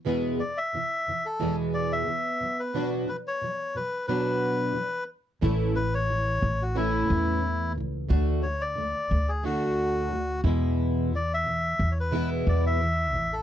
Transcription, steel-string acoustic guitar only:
X:1
M:4/4
L:1/8
Q:"Swing 16ths" 1/4=90
K:Emix
V:1 name="Steel-string acoustic guitar" clef=bass
[E,,B,,E,G,B,G] [E,,B,,E,] [E,,B,,E,] [E,,B,,E,] [E,,B,,E,G,B,G]2 [E,,B,,E,] [B,,F,] | [B,,F,B,DF] [B,,F,] [B,,F,] [B,,F,] [B,,F,B,DF]2 [B,,F,] z | [A,,E,A,CE] [A,,E,] [A,,E,] [A,,E,] [A,,E,A,CE]2 [A,,E,] [A,,E,] | [D,A,DF] D, [D,A,] [D,A,] [D,A,DF]2 [D,A,] [E,,B,,E,G,B,E]- |
[E,,B,,E,G,B,E] [E,,B,,E,] [E,,B,,E,] [E,,B,,E,] [E,,B,,E,G,B,E]2 [E,,B,,E,] [A,,E,] |]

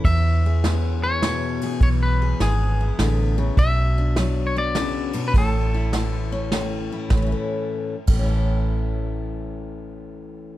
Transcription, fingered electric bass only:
X:1
M:3/4
L:1/8
Q:"Swing" 1/4=102
K:A
V:1 name="Fingered electric bass" clef=bass
E,,6 | B,,,2 G,,,2 A,,,2 | B,,,6 | A,,,6 |
A,,, z2 A,,,3- | A,,,6 |]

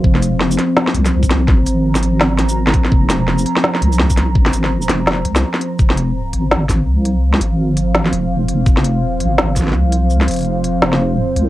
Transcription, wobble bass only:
X:1
M:4/4
L:1/8
Q:"Swing 16ths" 1/4=167
K:Fm
V:1 name="Wobble bass" clef=bass
F,,,3 z2 C,,3- | C,, A,,,6 z | F,,,3 z2 C,,3- | C,, A,,,2 F,,,2 C,, z2 |
F,,,3 A,,,3 C,,2- | C,, A,,,4 F,,,3 | F,,,3 A,,,3 C,,2- | C,, F,,,3 F,,,3 C,, |]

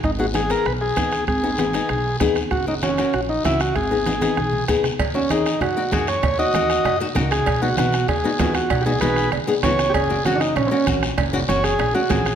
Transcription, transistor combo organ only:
X:1
M:4/4
L:1/8
Q:1/4=194
K:G#m
V:1 name="Transistor combo organ"
D F G A B G3 | G6 z2 | F D C2 F D E F | G6 z2 |
z C D2 F2 G c- | c [Fd]4 z2 G- | G F F2 G3 F- | F [=G^G] [GB]2 z2 c2 |
[=G^G]2 F [=D^D] C [^B,C] z2 | z2 c G2 F G2 |]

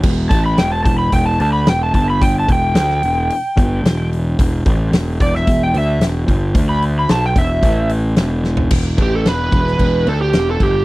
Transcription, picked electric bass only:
X:1
M:4/4
L:1/8
Q:1/4=111
K:Em
V:1 name="Picked electric bass" clef=bass
E,,, A,,, E,,, E,,, E,,, D,, E,,, G,,,- | G,,, E,,, D,, E,,, z G,,, E,,,2 | E,,, A,,, E,,, E,,, E,,, D,, E,,, G,,, | D,,2 B,,, E,,, A,,,2 E,,,2 |
E,,, A,,, E,,, E,,, E,,, D,, E,,, G,,, |]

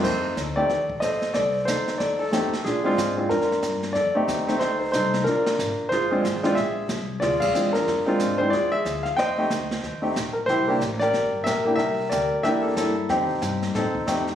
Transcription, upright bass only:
X:1
M:4/4
L:1/8
Q:"Swing" 1/4=184
K:F
V:1 name="Upright bass" clef=bass
F,,2 D,,2 _E,,2 B,,,2 | C,,2 D,,2 _E,,2 F,, z | B,,2 _A,,2 F,,2 G,,2 | F,,2 _E,,2 D,,2 C,,2 |
B,,,2 _A,,, z G,,,2 A,,,2 | B,,,2 C,,2 D,,2 E,,2 | F,, z _A,,2 E,, z D,,2 | F,,2 D,,2 _E,,2 B,,,2 |
C,,2 A,,,2 G,,,2 B,,,2 | C,,2 D,,2 E,,2 G,,2 | (3F,, _E,, C,, G,,2 (3A,, F,, E,, F,,2 |]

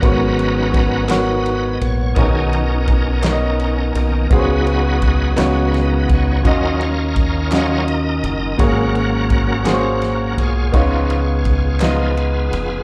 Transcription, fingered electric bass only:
X:1
M:6/8
L:1/8
Q:3/8=56
K:G#dor
V:1 name="Fingered electric bass" clef=bass
G,,,4- G,,, A,,, | B,,,4- B,,, B,,, | C,,3 C,,2 C,, | D,,4- D,, F,,, |
G,,,4- G,,, B,,, | C,,4- C,, E,,, |]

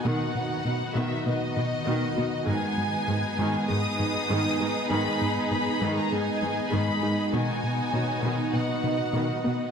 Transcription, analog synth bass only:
X:1
M:4/4
L:1/8
Q:1/4=99
K:G#m
V:1 name="Analog synth bass" clef=bass
B,, B,, B,, B,, B,, B,, B,, B, | G,, G,, G,, G,, G,, G,, G,, G, | G,, G,, G,, G,, G,, G,, G,, G, | B,, B,, B,, B,, B,, B,, B,, B, |]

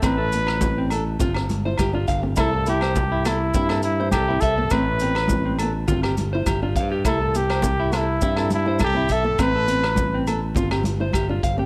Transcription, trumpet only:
X:1
M:4/4
L:1/8
Q:1/4=103
K:C
V:1 name="Trumpet"
B3 z4 z | A G2 E2 E G A | B3 z4 z | A G2 E2 E G A |
B3 z4 z |]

